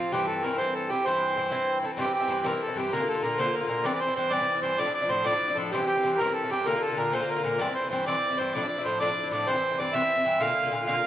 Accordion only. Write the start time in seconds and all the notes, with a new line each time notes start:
Already playing: F4
0.12 G4
0.27 A4
0.43 A#4
0.58 C5
0.74 A4
0.89 G4
1.04 C5
1.85 A4
1.99 G4
2.14 G4
2.46 A#4
2.62 A4
2.77 G4
2.92 A#4
3.08 A4
3.23 A#4
3.39 C5
3.53 A#4
3.68 A#4
3.84 D5
3.94 D5
4.00 C5
4.16 C5
4.30 D5
4.62 C5
4.78 D5
4.94 D5
5.09 C5
5.25 D5
5.55 A4
5.72 G4
5.87 G4
6.18 A#4
6.34 A4
6.51 G4
6.66 A#4
6.82 A4
6.98 A#4
7.14 C5
7.30 A#4
7.44 A#4
7.58 D5
7.74 C5
7.90 C5
8.06 D5
8.37 C5
8.53 D5
8.68 D5
8.84 C5
8.99 D5
9.32 D5
9.47 C5
9.79 D5
9.93 E5
10.40 F5
10.86 F5